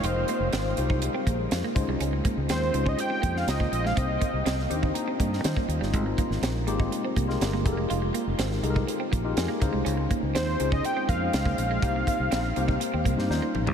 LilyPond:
<<
  \new Staff \with { instrumentName = "Analog synth lead" } { \time 4/4 \key c \phrygian \tempo 4 = 122 c''4. r2 r8 | r4 c''8. ees''16 g''8. f''16 ees''8 ees''16 f''16 | ees''4. r2 r8 | r1 |
r1 | r4 c''8. ees''16 g''8 f''4.~ | f''2. r4 | }
  \new Staff \with { instrumentName = "Tine electric piano" } { \time 4/4 \key c \phrygian << { r2 <g' bes'>8 <aes' c''>8 <c'' ees''>4 | r1 | r2 <g'' bes''>8 <c'' ees''>4 r8 | r1 |
r2. aes''8 f''8 | r1 | r1 | } \\ { <aes ees' f' g' bes'>4~ <aes ees' f' g' bes'>16 r16 <g aes ees' f' g' c''>4 r4 <aes des' ees' f' c''>8~ | <aes des' ees' f' c''>4~ <aes des' ees' f' c''>16 r16 <aes des' ees' f' c''>4 r16 <aes des' ees' f' c''>4 r16 | <bes c' ees' g' c''>4~ <bes c' ees' g' c''>16 r16 <bes c' d' ees' g' c''>4 r8 <g des' ees' f' c''>8. r16 | <aes c' ees' f' bes'>4~ <aes c' ees' f' bes'>16 r16 <aes bes c' ees' f' g'>4 r16 <aes c' ees' f' bes'>8. <aes ees' f' g' a' bes'>8~ |
<aes ees' f' g' a' bes'>4~ <aes ees' f' g' a' bes'>16 r16 <aes ees' f' g' a' bes'>4 r16 <aes ees' f' g' bes'>8. <aes des' ees' fes' f' c''>8~ | <aes des' ees' fes' f' c''>4~ <aes des' ees' fes' f' c''>16 r16 <aes des' ees' f' c''>4 r16 <aes des' ees' f' c''>4 r16 | <bes c' ees' g' c''>4~ <bes c' ees' g' c''>16 r16 <bes c' ees' g' c''>4 r16 <bes c' ees' g' c''>16 <g des' ees' f' c''>8. r16 | } >> }
  \new Staff \with { instrumentName = "Clean electric guitar" } { \time 4/4 \key c \phrygian f'16 r16 bes16 r16 c'16 r8 ees'16 r16 c'16 bes16 r8 bes16 r16 aes16 | des'16 r16 bes16 r16 c'16 r8 des'16 r16 c'16 bes16 r8 bes16 r16 aes16 | c'16 r16 bes16 r16 c'16 r8 ees'16 r16 c'16 bes16 r8 bes16 r16 g16 | aes16 r16 bes16 r16 c'16 r8 ees'16 r16 c'16 bes16 r8 bes16 r16 aes16 |
f'16 r16 bes16 r16 c'16 r8 ees'16 r16 c'16 bes16 r8 bes16 r16 aes16 | des'16 r16 bes16 r16 c'16 r8 des'16 r16 c'16 bes16 r8 bes16 r16 aes16 | c'16 r16 bes16 r16 c'16 r8 ees'16 r16 c'16 bes16 r8 bes16 r16 g16 | }
  \new Staff \with { instrumentName = "Fingered electric bass" } { \clef bass \time 4/4 \key c \phrygian f,,8 r16 f,,16 aes,,8 c,8. r16 bes,,8 f,16 r16 des,16 c,16 | des,8 r16 des,16 ees,8 des,8 r8 f,8 des,8 bes,,8 | c,8 r16 c,16 c,8 ees,8 r8 g,8 ees16 r16 ees,16 g,,16 | aes,,8 r16 aes,,16 bes,,8 aes,,8 r8 c,8 g,,8 f,,8 |
f,,8 r16 f,,16 aes,,8 c,8 r8 bes,,8 f,16 r16 des,16 c,16 | des,8 r16 des,16 ees,8 des,8 r8 f,8 des,8 bes,,8 | c,8 r16 c,16 bes,,8 c,8 r16 ees,16 c,16 g,16 ees,16 r16 bes,,16 c,16 | }
  \new DrumStaff \with { instrumentName = "Drums" } \drummode { \time 4/4 hh8 hh8 <hh sn>8 hh16 bd16 hh8 <hh bd>8 <hh sn>8 <hh bd>8 | hh8 <hh bd>8 <hh sn>8 hh16 bd16 hh8 <hh bd>16 sn16 <hh sn>16 bd16 hh16 sn16 | <hh bd>8 <hh bd>8 <hh sn>16 sn16 hh16 bd16 hh8 <hh bd>16 sn16 <hh sn>16 bd16 hh16 sn16 | <hh bd>8 <hh bd>16 sn16 <hh sn>8 hh16 bd16 hh8 <hh bd>16 sn16 <hh sn>8 <hh bd>8 |
hh8 hh8 <hh sn>16 sn16 hh16 bd16 hh8 <hh bd>8 <hh sn>8 <hh bd>8 | hh8 <hh bd>8 <hh sn>8 hh16 bd16 hh8 <hh bd>8 <hh sn>16 bd16 hh8 | <hh bd>8 <hh bd>8 <hh sn>8 hh16 bd16 hh8 <hh bd>16 sn16 sn8 toml16 tomfh16 | }
>>